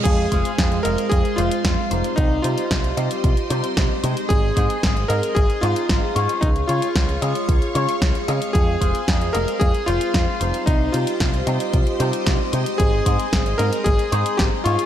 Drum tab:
CC |x---------------|----------------|----------------|----------------|
HH |x-xxxxxxxxxxx-xx|x-xxxxxxxxxxx-xx|x-xxxxxxxxxxx-xx|xxxxxxxxxxxxxxxx|
SD |----o-------o---|----o-------o---|----o-------o---|----o-------o---|
T1 |----------------|----------------|----------------|----------------|
BD |o-o-o---o---o---|o---o---o---o---|o-o-o---o---o---|o---o---o---o---|

CC |----------------|----------------|----------------|
HH |x-xxxxxxxxxxx-xx|x-xxxxxxxxxxx-xx|x-xxxxxxxxxxx-xx|
SD |----o-------o---|----o-------o---|----o-------o---|
T1 |------o-o-------|----------------|------o-o-------|
BD |o-o-o---o---o---|o---o---o---o---|o-o-o---o---o---|